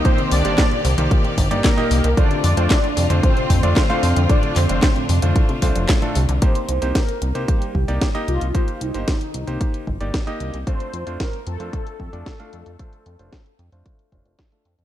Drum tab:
HH |xxoxxxoxxxoxxxox|xxoxxxoxxxoxxxox|xxoxxxoxxxoxxxox|xxxxxxxxxx-xxxxx|
CP |----x-------x---|----x-------x---|--x-x-------x---|----------------|
SD |----o-------o---|----o-------o---|----o-------o---|----o-------o---|
BD |o---o---o-o-o---|o---o---o-o-o---|o---o---o-o-o---|o---o---o-o-o---|

HH |xxxxxxxxxx-xxxxx|xxxxxxxxxx-xxxxx|xxxxxxxxxxxxxxxx|
CP |----------------|----------------|----------------|
SD |----o-------o---|----o-------o---|----o-------o---|
BD |o---o---o-o-o---|o---o---o-o-o---|o---o---o-o-o---|